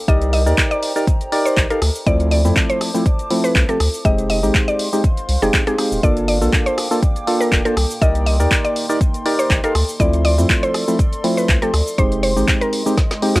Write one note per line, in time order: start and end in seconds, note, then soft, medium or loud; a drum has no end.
0.00 1.80 C5 medium
0.00 1.80 G5 medium
0.00 1.80 A#5 medium
0.08 0.48 C2 loud
0.08 0.43 D#4 medium
0.08 0.43 G4 medium
0.08 0.43 A#4 medium
0.08 0.43 D5 medium
0.08 0.29 D#5 loud
0.08 kick loud
0.08 closed hi-hat medium
0.08 shaker medium
0.22 closed hi-hat medium
0.22 shaker soft
0.33 0.64 D#5 medium
0.33 open hi-hat loud
0.46 0.53 D#2 loud
0.46 0.93 D#4 medium
0.46 0.93 G4 medium
0.46 0.93 A#4 medium
0.46 0.93 D5 medium
0.46 shaker medium
0.58 kick loud
0.58 clap loud
0.58 closed hi-hat medium
0.58 shaker medium
0.71 1.11 D5 loud
0.71 closed hi-hat medium
0.71 shaker soft
0.83 open hi-hat loud
0.96 1.06 D#4 loud
0.96 1.06 G4 medium
0.96 1.06 A#4 medium
0.96 1.06 D5 loud
0.96 shaker medium
1.07 kick loud
1.07 closed hi-hat medium
1.07 shaker medium
1.21 closed hi-hat medium
1.21 shaker soft
1.32 1.67 D#4 loud
1.32 1.67 G4 medium
1.32 1.67 A#4 medium
1.32 1.67 D5 loud
1.32 open hi-hat loud
1.45 1.65 C5 medium
1.45 shaker medium
1.57 1.65 A#1 loud
1.57 kick loud
1.57 clap loud
1.57 closed hi-hat medium
1.57 shaker medium
1.70 1.80 D#4 medium
1.70 1.80 G4 medium
1.70 2.00 A4 loud
1.70 1.80 A#4 medium
1.70 1.80 F5 medium
1.70 closed hi-hat medium
1.70 shaker soft
1.82 1.90 D2 medium
1.82 4.03 C5 medium
1.82 4.03 A5 medium
1.82 4.03 D6 medium
1.82 cross-stick medium
1.82 open hi-hat loud
1.95 shaker medium
2.07 2.46 D2 loud
2.07 2.42 F3 medium
2.07 2.42 A3 medium
2.07 2.42 C4 medium
2.07 2.42 E4 medium
2.07 2.27 D5 loud
2.07 kick loud
2.07 closed hi-hat medium
2.07 shaker medium
2.20 closed hi-hat medium
2.20 shaker soft
2.31 2.62 D5 medium
2.31 open hi-hat loud
2.45 2.52 F2 loud
2.45 2.91 F3 medium
2.45 2.91 A3 medium
2.45 2.91 C4 medium
2.45 2.91 E4 medium
2.45 shaker medium
2.56 kick loud
2.56 clap loud
2.56 closed hi-hat medium
2.56 shaker medium
2.70 3.09 C5 loud
2.70 closed hi-hat medium
2.70 shaker soft
2.81 cross-stick medium
2.81 open hi-hat loud
2.94 3.04 F3 loud
2.94 3.04 A3 medium
2.94 3.04 C4 medium
2.94 3.04 E4 loud
2.94 shaker medium
3.06 kick loud
3.06 closed hi-hat medium
3.06 shaker medium
3.19 closed hi-hat medium
3.19 shaker soft
3.31 3.66 F3 loud
3.31 3.66 A3 medium
3.31 3.66 C4 medium
3.31 3.66 E4 loud
3.31 open hi-hat loud
3.44 3.64 B4 medium
3.44 shaker medium
3.55 3.63 C2 loud
3.55 kick loud
3.55 clap loud
3.55 closed hi-hat medium
3.55 shaker medium
3.69 3.78 F3 medium
3.69 3.78 A3 medium
3.69 3.78 C4 medium
3.69 3.78 G4 medium
3.69 3.99 A4 medium
3.69 closed hi-hat medium
3.69 shaker soft
3.80 3.88 D2 medium
3.80 cross-stick medium
3.80 open hi-hat loud
3.94 shaker medium
4.05 4.45 F1 loud
4.05 4.40 G#3 medium
4.05 4.40 C4 medium
4.05 4.40 D#4 medium
4.05 4.40 G4 medium
4.05 6.01 C5 medium
4.05 4.25 D#5 loud
4.05 7.73 F5 medium
4.05 6.01 C6 medium
4.05 kick loud
4.05 closed hi-hat medium
4.05 shaker medium
4.18 closed hi-hat medium
4.18 shaker soft
4.30 4.60 D#5 loud
4.30 open hi-hat loud
4.43 4.50 G#1 loud
4.43 4.89 G#3 medium
4.43 4.89 C4 medium
4.43 4.90 D#4 medium
4.43 4.90 G4 medium
4.43 shaker medium
4.55 kick loud
4.55 clap loud
4.55 closed hi-hat medium
4.55 shaker medium
4.68 5.07 D5 loud
4.68 closed hi-hat soft
4.68 shaker soft
4.79 open hi-hat loud
4.93 5.02 G#3 loud
4.93 5.02 C4 medium
4.93 5.02 D#4 medium
4.93 5.02 G4 loud
4.93 shaker medium
5.04 kick loud
5.04 closed hi-hat medium
5.04 shaker medium
5.17 closed hi-hat medium
5.17 shaker soft
5.29 5.37 C2 loud
5.29 open hi-hat loud
5.42 5.49 F1 loud
5.42 5.64 G#3 medium
5.42 5.64 C4 medium
5.42 5.64 D#4 medium
5.42 5.64 G4 loud
5.42 5.62 G#4 medium
5.42 shaker medium
5.54 kick loud
5.54 clap loud
5.54 closed hi-hat medium
5.54 shaker medium
5.67 5.76 G#3 medium
5.67 5.76 C4 medium
5.67 5.76 D#4 medium
5.67 5.76 G4 loud
5.67 5.97 G#4 loud
5.67 closed hi-hat medium
5.67 shaker soft
5.78 6.01 G#3 medium
5.78 6.01 C4 medium
5.78 6.01 D#4 medium
5.78 6.01 G4 medium
5.78 cross-stick medium
5.78 open hi-hat loud
5.92 5.99 D#1 loud
5.92 shaker medium
6.03 6.43 G1 loud
6.03 6.38 A#3 medium
6.03 9.71 A#3 medium
6.03 6.38 D4 medium
6.03 6.38 F4 medium
6.03 6.38 A4 medium
6.03 6.24 D5 loud
6.03 9.71 G5 medium
6.03 7.75 D6 medium
6.03 kick loud
6.03 closed hi-hat medium
6.03 shaker medium
6.17 closed hi-hat soft
6.17 shaker soft
6.28 6.59 D5 medium
6.28 open hi-hat loud
6.41 6.48 A#1 loud
6.41 6.88 A#3 medium
6.41 6.88 D4 medium
6.41 6.88 F4 medium
6.41 6.88 A4 medium
6.41 shaker medium
6.53 kick loud
6.53 clap loud
6.53 closed hi-hat medium
6.53 shaker medium
6.66 7.06 C5 loud
6.66 closed hi-hat medium
6.66 shaker soft
6.78 cross-stick medium
6.78 open hi-hat loud
6.91 7.01 A#3 loud
6.91 7.01 D4 medium
6.91 7.01 F4 medium
6.91 7.01 A4 loud
6.91 shaker medium
7.02 kick loud
7.02 closed hi-hat medium
7.02 shaker medium
7.16 closed hi-hat medium
7.16 shaker soft
7.27 7.62 A#3 loud
7.27 7.62 D4 medium
7.27 7.62 F4 medium
7.27 7.62 A4 loud
7.27 open hi-hat loud
7.41 7.60 A#4 medium
7.41 shaker medium
7.52 7.60 F1 loud
7.52 kick loud
7.52 clap loud
7.52 closed hi-hat medium
7.52 shaker medium
7.65 7.75 A#3 medium
7.65 7.75 D4 medium
7.65 7.75 F4 medium
7.65 7.95 A4 loud
7.65 7.75 C5 medium
7.65 closed hi-hat medium
7.65 shaker soft
7.77 7.85 C2 medium
7.77 9.73 D#4 medium
7.77 13.40 C6 medium
7.77 cross-stick medium
7.77 open hi-hat loud
7.91 shaker medium
8.02 8.41 C2 loud
8.02 8.37 D#4 medium
8.02 8.37 G4 medium
8.02 8.37 A#4 medium
8.02 8.37 D5 medium
8.02 8.22 D#5 loud
8.02 kick loud
8.02 closed hi-hat medium
8.02 shaker medium
8.15 closed hi-hat medium
8.15 shaker soft
8.26 8.57 D#5 medium
8.26 open hi-hat loud
8.40 8.47 D#2 loud
8.40 8.86 D#4 medium
8.40 8.86 G4 medium
8.40 8.86 A#4 medium
8.40 8.86 D5 medium
8.40 shaker medium
8.51 kick loud
8.51 clap loud
8.51 closed hi-hat medium
8.51 shaker medium
8.65 9.04 D5 loud
8.65 closed hi-hat medium
8.65 shaker soft
8.76 open hi-hat loud
8.89 8.99 D#4 loud
8.89 8.99 G4 medium
8.89 8.99 A#4 medium
8.89 8.99 D5 loud
8.89 shaker medium
9.01 kick loud
9.01 closed hi-hat medium
9.01 shaker medium
9.14 closed hi-hat medium
9.14 shaker soft
9.26 9.61 D#4 loud
9.26 9.61 G4 medium
9.26 9.61 A#4 medium
9.26 9.61 D5 loud
9.26 open hi-hat loud
9.39 9.59 C5 medium
9.39 shaker medium
9.50 9.59 A#1 loud
9.50 kick loud
9.50 clap loud
9.50 closed hi-hat medium
9.50 shaker medium
9.64 9.73 D#4 medium
9.64 9.73 G4 medium
9.64 9.94 A4 medium
9.64 9.73 A#4 medium
9.64 9.73 F5 medium
9.64 closed hi-hat medium
9.64 shaker soft
9.75 9.83 D2 medium
9.75 11.96 A4 medium
9.75 11.96 D5 medium
9.75 cross-stick medium
9.75 open hi-hat loud
9.89 shaker medium
10.00 10.40 D2 loud
10.00 10.35 F3 medium
10.00 10.35 A3 medium
10.00 10.35 C4 medium
10.00 10.35 E4 medium
10.00 10.20 D5 loud
10.00 kick loud
10.00 closed hi-hat medium
10.00 shaker medium
10.13 closed hi-hat medium
10.13 shaker soft
10.25 10.55 D5 medium
10.25 open hi-hat loud
10.38 10.45 F2 loud
10.38 10.85 F3 medium
10.38 10.85 A3 medium
10.38 10.85 C4 medium
10.38 10.85 E4 medium
10.38 shaker medium
10.50 kick loud
10.50 clap loud
10.50 closed hi-hat medium
10.50 shaker medium
10.63 11.02 C5 loud
10.63 closed hi-hat medium
10.63 shaker soft
10.74 cross-stick medium
10.74 open hi-hat loud
10.88 10.97 F3 loud
10.88 10.97 A3 medium
10.88 10.97 C4 medium
10.88 10.97 E4 loud
10.88 shaker medium
10.99 kick loud
10.99 closed hi-hat medium
10.99 shaker medium
11.13 closed hi-hat medium
11.13 shaker soft
11.24 11.59 F3 loud
11.24 11.59 A3 medium
11.24 11.59 C4 medium
11.24 11.59 E4 loud
11.24 open hi-hat loud
11.37 11.57 B4 medium
11.37 shaker medium
11.49 11.57 C2 loud
11.49 kick loud
11.49 clap loud
11.49 closed hi-hat medium
11.49 shaker medium
11.62 11.72 F3 medium
11.62 11.72 A3 medium
11.62 11.72 C4 medium
11.62 11.72 G4 medium
11.62 11.92 A4 medium
11.62 closed hi-hat medium
11.62 shaker soft
11.74 11.82 D2 medium
11.74 cross-stick medium
11.74 open hi-hat loud
11.87 shaker medium
11.98 12.38 F1 loud
11.98 12.33 G#3 medium
11.98 13.40 G#3 medium
11.98 12.33 C4 medium
11.98 12.33 D#4 medium
11.98 12.33 G4 medium
11.98 12.19 C5 loud
11.98 13.40 D#5 medium
11.98 kick loud
11.98 closed hi-hat medium
11.98 shaker medium
12.12 closed hi-hat medium
12.12 shaker soft
12.23 12.54 C5 medium
12.23 open hi-hat loud
12.37 12.43 G#1 loud
12.37 12.83 G#3 medium
12.37 12.83 C4 medium
12.37 12.83 D#4 medium
12.37 12.83 G4 medium
12.37 shaker medium
12.48 kick loud
12.48 clap loud
12.48 closed hi-hat medium
12.48 shaker medium
12.61 13.01 A#4 loud
12.61 closed hi-hat medium
12.61 shaker soft
12.73 open hi-hat loud
12.86 12.96 G#3 loud
12.86 12.96 C4 medium
12.86 12.96 D#4 medium
12.86 12.96 G4 loud
12.86 shaker medium
12.98 kick loud
12.98 snare medium
12.98 closed hi-hat medium
12.98 shaker medium
13.11 snare medium
13.11 closed hi-hat medium
13.11 shaker soft
13.22 13.40 G#3 loud
13.22 13.40 C4 medium
13.22 13.40 D#4 medium
13.22 13.40 G4 loud
13.22 open hi-hat loud
13.36 13.40 F2 loud
13.36 13.40 F4 medium
13.36 snare medium
13.36 shaker medium